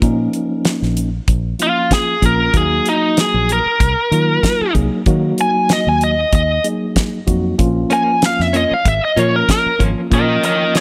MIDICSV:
0, 0, Header, 1, 7, 480
1, 0, Start_track
1, 0, Key_signature, -5, "minor"
1, 0, Tempo, 630915
1, 19, Time_signature, 4, 2, 24, 8
1, 8220, End_track
2, 0, Start_track
2, 0, Title_t, "Lead electric guitar"
2, 0, Program_c, 0, 29
2, 1236, Note_on_c, 0, 65, 81
2, 1459, Note_off_c, 0, 65, 0
2, 1471, Note_on_c, 0, 68, 89
2, 1696, Note_off_c, 0, 68, 0
2, 1717, Note_on_c, 0, 70, 73
2, 1939, Note_off_c, 0, 70, 0
2, 1957, Note_on_c, 0, 68, 85
2, 2179, Note_off_c, 0, 68, 0
2, 2200, Note_on_c, 0, 63, 86
2, 2420, Note_off_c, 0, 63, 0
2, 2437, Note_on_c, 0, 68, 73
2, 2658, Note_off_c, 0, 68, 0
2, 2681, Note_on_c, 0, 70, 90
2, 3598, Note_off_c, 0, 70, 0
2, 4116, Note_on_c, 0, 80, 89
2, 4337, Note_off_c, 0, 80, 0
2, 4357, Note_on_c, 0, 75, 94
2, 4471, Note_off_c, 0, 75, 0
2, 4478, Note_on_c, 0, 80, 87
2, 4578, Note_off_c, 0, 80, 0
2, 4592, Note_on_c, 0, 75, 87
2, 4815, Note_off_c, 0, 75, 0
2, 4833, Note_on_c, 0, 75, 85
2, 5056, Note_off_c, 0, 75, 0
2, 6033, Note_on_c, 0, 80, 82
2, 6256, Note_off_c, 0, 80, 0
2, 6281, Note_on_c, 0, 77, 75
2, 6393, Note_off_c, 0, 77, 0
2, 6402, Note_on_c, 0, 76, 83
2, 6500, Note_off_c, 0, 76, 0
2, 6518, Note_on_c, 0, 75, 86
2, 6632, Note_off_c, 0, 75, 0
2, 6647, Note_on_c, 0, 77, 92
2, 6742, Note_off_c, 0, 77, 0
2, 6757, Note_on_c, 0, 76, 92
2, 6871, Note_off_c, 0, 76, 0
2, 6882, Note_on_c, 0, 75, 81
2, 6990, Note_off_c, 0, 75, 0
2, 6990, Note_on_c, 0, 73, 88
2, 7108, Note_off_c, 0, 73, 0
2, 7121, Note_on_c, 0, 70, 80
2, 7220, Note_off_c, 0, 70, 0
2, 7237, Note_on_c, 0, 70, 96
2, 7459, Note_off_c, 0, 70, 0
2, 7714, Note_on_c, 0, 70, 75
2, 7721, Note_on_c, 0, 75, 83
2, 7939, Note_off_c, 0, 75, 0
2, 7942, Note_off_c, 0, 70, 0
2, 7951, Note_on_c, 0, 70, 74
2, 7958, Note_on_c, 0, 75, 85
2, 8167, Note_off_c, 0, 70, 0
2, 8179, Note_off_c, 0, 75, 0
2, 8194, Note_on_c, 0, 68, 69
2, 8220, Note_off_c, 0, 68, 0
2, 8220, End_track
3, 0, Start_track
3, 0, Title_t, "Tine electric piano"
3, 0, Program_c, 1, 4
3, 14, Note_on_c, 1, 61, 87
3, 15, Note_on_c, 1, 53, 85
3, 16, Note_on_c, 1, 58, 75
3, 16, Note_on_c, 1, 63, 104
3, 819, Note_off_c, 1, 61, 0
3, 820, Note_off_c, 1, 53, 0
3, 820, Note_off_c, 1, 63, 0
3, 821, Note_off_c, 1, 58, 0
3, 1211, Note_on_c, 1, 53, 64
3, 1213, Note_on_c, 1, 61, 54
3, 1214, Note_on_c, 1, 58, 58
3, 1214, Note_on_c, 1, 65, 68
3, 1618, Note_off_c, 1, 53, 0
3, 1620, Note_off_c, 1, 58, 0
3, 1620, Note_off_c, 1, 61, 0
3, 1620, Note_off_c, 1, 65, 0
3, 1685, Note_on_c, 1, 58, 62
3, 1686, Note_on_c, 1, 53, 67
3, 1686, Note_on_c, 1, 61, 57
3, 1687, Note_on_c, 1, 65, 75
3, 1893, Note_off_c, 1, 53, 0
3, 1893, Note_off_c, 1, 58, 0
3, 1893, Note_off_c, 1, 61, 0
3, 1894, Note_off_c, 1, 65, 0
3, 1927, Note_on_c, 1, 58, 74
3, 1927, Note_on_c, 1, 63, 69
3, 1928, Note_on_c, 1, 54, 70
3, 1929, Note_on_c, 1, 66, 79
3, 2735, Note_off_c, 1, 54, 0
3, 2735, Note_off_c, 1, 58, 0
3, 2735, Note_off_c, 1, 63, 0
3, 2736, Note_off_c, 1, 66, 0
3, 3129, Note_on_c, 1, 58, 60
3, 3130, Note_on_c, 1, 54, 69
3, 3130, Note_on_c, 1, 65, 74
3, 3132, Note_on_c, 1, 63, 56
3, 3537, Note_off_c, 1, 54, 0
3, 3537, Note_off_c, 1, 58, 0
3, 3537, Note_off_c, 1, 65, 0
3, 3538, Note_off_c, 1, 63, 0
3, 3612, Note_on_c, 1, 54, 83
3, 3612, Note_on_c, 1, 63, 74
3, 3614, Note_on_c, 1, 58, 67
3, 3614, Note_on_c, 1, 68, 82
3, 3815, Note_off_c, 1, 54, 0
3, 3815, Note_off_c, 1, 63, 0
3, 3816, Note_off_c, 1, 58, 0
3, 3816, Note_off_c, 1, 68, 0
3, 3852, Note_on_c, 1, 54, 94
3, 3852, Note_on_c, 1, 58, 86
3, 3852, Note_on_c, 1, 66, 103
3, 3853, Note_on_c, 1, 63, 79
3, 4657, Note_off_c, 1, 54, 0
3, 4657, Note_off_c, 1, 58, 0
3, 4657, Note_off_c, 1, 63, 0
3, 4657, Note_off_c, 1, 66, 0
3, 5052, Note_on_c, 1, 58, 59
3, 5053, Note_on_c, 1, 54, 65
3, 5053, Note_on_c, 1, 63, 60
3, 5053, Note_on_c, 1, 68, 69
3, 5458, Note_off_c, 1, 58, 0
3, 5458, Note_off_c, 1, 63, 0
3, 5459, Note_off_c, 1, 54, 0
3, 5459, Note_off_c, 1, 68, 0
3, 5530, Note_on_c, 1, 63, 77
3, 5530, Note_on_c, 1, 66, 90
3, 5531, Note_on_c, 1, 54, 77
3, 5532, Note_on_c, 1, 58, 74
3, 5734, Note_off_c, 1, 63, 0
3, 5734, Note_off_c, 1, 66, 0
3, 5735, Note_off_c, 1, 54, 0
3, 5735, Note_off_c, 1, 58, 0
3, 5769, Note_on_c, 1, 61, 87
3, 5770, Note_on_c, 1, 53, 90
3, 5770, Note_on_c, 1, 58, 83
3, 5771, Note_on_c, 1, 65, 103
3, 6576, Note_off_c, 1, 61, 0
3, 6577, Note_off_c, 1, 53, 0
3, 6577, Note_off_c, 1, 58, 0
3, 6577, Note_off_c, 1, 65, 0
3, 6969, Note_on_c, 1, 65, 73
3, 6970, Note_on_c, 1, 58, 60
3, 6971, Note_on_c, 1, 61, 60
3, 6973, Note_on_c, 1, 53, 76
3, 7377, Note_off_c, 1, 58, 0
3, 7377, Note_off_c, 1, 65, 0
3, 7378, Note_off_c, 1, 61, 0
3, 7379, Note_off_c, 1, 53, 0
3, 7449, Note_on_c, 1, 53, 72
3, 7449, Note_on_c, 1, 58, 62
3, 7449, Note_on_c, 1, 61, 63
3, 7451, Note_on_c, 1, 65, 85
3, 7654, Note_off_c, 1, 58, 0
3, 7655, Note_off_c, 1, 53, 0
3, 7655, Note_off_c, 1, 61, 0
3, 7655, Note_off_c, 1, 65, 0
3, 7685, Note_on_c, 1, 58, 67
3, 7687, Note_on_c, 1, 65, 87
3, 7688, Note_on_c, 1, 53, 81
3, 7689, Note_on_c, 1, 61, 72
3, 8220, Note_off_c, 1, 53, 0
3, 8220, Note_off_c, 1, 58, 0
3, 8220, Note_off_c, 1, 61, 0
3, 8220, Note_off_c, 1, 65, 0
3, 8220, End_track
4, 0, Start_track
4, 0, Title_t, "Clean electric guitar"
4, 0, Program_c, 2, 27
4, 6011, Note_on_c, 2, 61, 66
4, 6022, Note_on_c, 2, 58, 71
4, 6030, Note_on_c, 2, 53, 56
4, 6164, Note_off_c, 2, 61, 0
4, 6169, Note_off_c, 2, 58, 0
4, 6173, Note_off_c, 2, 53, 0
4, 6491, Note_on_c, 2, 61, 73
4, 6501, Note_on_c, 2, 58, 61
4, 6510, Note_on_c, 2, 53, 65
4, 6644, Note_off_c, 2, 61, 0
4, 6649, Note_off_c, 2, 58, 0
4, 6653, Note_off_c, 2, 53, 0
4, 6973, Note_on_c, 2, 61, 72
4, 6983, Note_on_c, 2, 58, 67
4, 6992, Note_on_c, 2, 53, 61
4, 7125, Note_off_c, 2, 61, 0
4, 7130, Note_off_c, 2, 58, 0
4, 7134, Note_off_c, 2, 53, 0
4, 7453, Note_on_c, 2, 61, 66
4, 7463, Note_on_c, 2, 58, 60
4, 7473, Note_on_c, 2, 53, 63
4, 7605, Note_off_c, 2, 61, 0
4, 7610, Note_off_c, 2, 58, 0
4, 7615, Note_off_c, 2, 53, 0
4, 7933, Note_on_c, 2, 61, 71
4, 7944, Note_on_c, 2, 58, 68
4, 7953, Note_on_c, 2, 53, 54
4, 8085, Note_off_c, 2, 61, 0
4, 8091, Note_off_c, 2, 58, 0
4, 8095, Note_off_c, 2, 53, 0
4, 8220, End_track
5, 0, Start_track
5, 0, Title_t, "Fingered electric bass"
5, 0, Program_c, 3, 33
5, 15, Note_on_c, 3, 46, 96
5, 207, Note_off_c, 3, 46, 0
5, 627, Note_on_c, 3, 34, 67
5, 906, Note_off_c, 3, 34, 0
5, 973, Note_on_c, 3, 34, 101
5, 1165, Note_off_c, 3, 34, 0
5, 1691, Note_on_c, 3, 34, 79
5, 1884, Note_off_c, 3, 34, 0
5, 1931, Note_on_c, 3, 39, 91
5, 2123, Note_off_c, 3, 39, 0
5, 2542, Note_on_c, 3, 34, 78
5, 2734, Note_off_c, 3, 34, 0
5, 2894, Note_on_c, 3, 36, 83
5, 2997, Note_off_c, 3, 36, 0
5, 3131, Note_on_c, 3, 51, 89
5, 3323, Note_off_c, 3, 51, 0
5, 3615, Note_on_c, 3, 36, 89
5, 3717, Note_off_c, 3, 36, 0
5, 3853, Note_on_c, 3, 51, 92
5, 4044, Note_off_c, 3, 51, 0
5, 4465, Note_on_c, 3, 39, 76
5, 4743, Note_off_c, 3, 39, 0
5, 4815, Note_on_c, 3, 39, 98
5, 5006, Note_off_c, 3, 39, 0
5, 5536, Note_on_c, 3, 41, 88
5, 5726, Note_off_c, 3, 41, 0
5, 5777, Note_on_c, 3, 34, 96
5, 5966, Note_off_c, 3, 34, 0
5, 6386, Note_on_c, 3, 41, 69
5, 6576, Note_off_c, 3, 41, 0
5, 6738, Note_on_c, 3, 32, 87
5, 6839, Note_off_c, 3, 32, 0
5, 6974, Note_on_c, 3, 46, 95
5, 7166, Note_off_c, 3, 46, 0
5, 7457, Note_on_c, 3, 32, 94
5, 7559, Note_off_c, 3, 32, 0
5, 7697, Note_on_c, 3, 46, 98
5, 7887, Note_off_c, 3, 46, 0
5, 8220, End_track
6, 0, Start_track
6, 0, Title_t, "Muted fingered electric bass strokes"
6, 2784, Note_on_c, 9, 29, 35
6, 2860, Note_off_c, 9, 29, 0
6, 3508, Note_on_c, 9, 29, 36
6, 3585, Note_off_c, 9, 29, 0
6, 6627, Note_on_c, 9, 29, 38
6, 6703, Note_off_c, 9, 29, 0
6, 7351, Note_on_c, 9, 29, 37
6, 7427, Note_off_c, 9, 29, 0
6, 8220, End_track
7, 0, Start_track
7, 0, Title_t, "Drums"
7, 15, Note_on_c, 9, 36, 104
7, 15, Note_on_c, 9, 42, 69
7, 91, Note_off_c, 9, 36, 0
7, 91, Note_off_c, 9, 42, 0
7, 254, Note_on_c, 9, 42, 61
7, 330, Note_off_c, 9, 42, 0
7, 493, Note_on_c, 9, 42, 69
7, 497, Note_on_c, 9, 38, 100
7, 569, Note_off_c, 9, 42, 0
7, 573, Note_off_c, 9, 38, 0
7, 629, Note_on_c, 9, 38, 30
7, 705, Note_off_c, 9, 38, 0
7, 736, Note_on_c, 9, 42, 60
7, 812, Note_off_c, 9, 42, 0
7, 972, Note_on_c, 9, 42, 76
7, 973, Note_on_c, 9, 36, 104
7, 1048, Note_off_c, 9, 42, 0
7, 1049, Note_off_c, 9, 36, 0
7, 1213, Note_on_c, 9, 42, 69
7, 1289, Note_off_c, 9, 42, 0
7, 1452, Note_on_c, 9, 36, 75
7, 1454, Note_on_c, 9, 42, 80
7, 1458, Note_on_c, 9, 38, 96
7, 1528, Note_off_c, 9, 36, 0
7, 1530, Note_off_c, 9, 42, 0
7, 1534, Note_off_c, 9, 38, 0
7, 1692, Note_on_c, 9, 36, 71
7, 1693, Note_on_c, 9, 42, 66
7, 1768, Note_off_c, 9, 36, 0
7, 1769, Note_off_c, 9, 42, 0
7, 1930, Note_on_c, 9, 42, 71
7, 1931, Note_on_c, 9, 36, 97
7, 2006, Note_off_c, 9, 42, 0
7, 2007, Note_off_c, 9, 36, 0
7, 2173, Note_on_c, 9, 42, 58
7, 2249, Note_off_c, 9, 42, 0
7, 2413, Note_on_c, 9, 42, 82
7, 2418, Note_on_c, 9, 38, 88
7, 2489, Note_off_c, 9, 42, 0
7, 2494, Note_off_c, 9, 38, 0
7, 2656, Note_on_c, 9, 42, 60
7, 2732, Note_off_c, 9, 42, 0
7, 2893, Note_on_c, 9, 36, 107
7, 2896, Note_on_c, 9, 42, 78
7, 2969, Note_off_c, 9, 36, 0
7, 2972, Note_off_c, 9, 42, 0
7, 3136, Note_on_c, 9, 42, 63
7, 3212, Note_off_c, 9, 42, 0
7, 3373, Note_on_c, 9, 36, 76
7, 3377, Note_on_c, 9, 42, 77
7, 3381, Note_on_c, 9, 38, 102
7, 3449, Note_off_c, 9, 36, 0
7, 3453, Note_off_c, 9, 42, 0
7, 3457, Note_off_c, 9, 38, 0
7, 3612, Note_on_c, 9, 36, 62
7, 3613, Note_on_c, 9, 42, 53
7, 3689, Note_off_c, 9, 36, 0
7, 3689, Note_off_c, 9, 42, 0
7, 3849, Note_on_c, 9, 42, 67
7, 3852, Note_on_c, 9, 36, 92
7, 3925, Note_off_c, 9, 42, 0
7, 3928, Note_off_c, 9, 36, 0
7, 4092, Note_on_c, 9, 42, 60
7, 4169, Note_off_c, 9, 42, 0
7, 4331, Note_on_c, 9, 42, 70
7, 4335, Note_on_c, 9, 38, 101
7, 4407, Note_off_c, 9, 42, 0
7, 4411, Note_off_c, 9, 38, 0
7, 4573, Note_on_c, 9, 42, 64
7, 4649, Note_off_c, 9, 42, 0
7, 4812, Note_on_c, 9, 42, 78
7, 4813, Note_on_c, 9, 36, 95
7, 4889, Note_off_c, 9, 36, 0
7, 4889, Note_off_c, 9, 42, 0
7, 5055, Note_on_c, 9, 42, 66
7, 5131, Note_off_c, 9, 42, 0
7, 5294, Note_on_c, 9, 42, 75
7, 5295, Note_on_c, 9, 36, 68
7, 5299, Note_on_c, 9, 38, 93
7, 5370, Note_off_c, 9, 42, 0
7, 5371, Note_off_c, 9, 36, 0
7, 5375, Note_off_c, 9, 38, 0
7, 5535, Note_on_c, 9, 36, 71
7, 5535, Note_on_c, 9, 42, 66
7, 5611, Note_off_c, 9, 42, 0
7, 5612, Note_off_c, 9, 36, 0
7, 5774, Note_on_c, 9, 42, 71
7, 5775, Note_on_c, 9, 36, 93
7, 5850, Note_off_c, 9, 42, 0
7, 5851, Note_off_c, 9, 36, 0
7, 6014, Note_on_c, 9, 42, 72
7, 6091, Note_off_c, 9, 42, 0
7, 6254, Note_on_c, 9, 42, 81
7, 6259, Note_on_c, 9, 38, 93
7, 6330, Note_off_c, 9, 42, 0
7, 6335, Note_off_c, 9, 38, 0
7, 6392, Note_on_c, 9, 38, 32
7, 6468, Note_off_c, 9, 38, 0
7, 6497, Note_on_c, 9, 42, 71
7, 6573, Note_off_c, 9, 42, 0
7, 6737, Note_on_c, 9, 36, 104
7, 6737, Note_on_c, 9, 42, 84
7, 6813, Note_off_c, 9, 36, 0
7, 6813, Note_off_c, 9, 42, 0
7, 6979, Note_on_c, 9, 42, 64
7, 7055, Note_off_c, 9, 42, 0
7, 7217, Note_on_c, 9, 36, 77
7, 7220, Note_on_c, 9, 42, 78
7, 7224, Note_on_c, 9, 38, 96
7, 7293, Note_off_c, 9, 36, 0
7, 7296, Note_off_c, 9, 42, 0
7, 7300, Note_off_c, 9, 38, 0
7, 7457, Note_on_c, 9, 36, 78
7, 7460, Note_on_c, 9, 42, 55
7, 7533, Note_off_c, 9, 36, 0
7, 7536, Note_off_c, 9, 42, 0
7, 7696, Note_on_c, 9, 36, 89
7, 7699, Note_on_c, 9, 42, 67
7, 7772, Note_off_c, 9, 36, 0
7, 7775, Note_off_c, 9, 42, 0
7, 7939, Note_on_c, 9, 42, 61
7, 8015, Note_off_c, 9, 42, 0
7, 8178, Note_on_c, 9, 42, 72
7, 8182, Note_on_c, 9, 38, 88
7, 8220, Note_off_c, 9, 38, 0
7, 8220, Note_off_c, 9, 42, 0
7, 8220, End_track
0, 0, End_of_file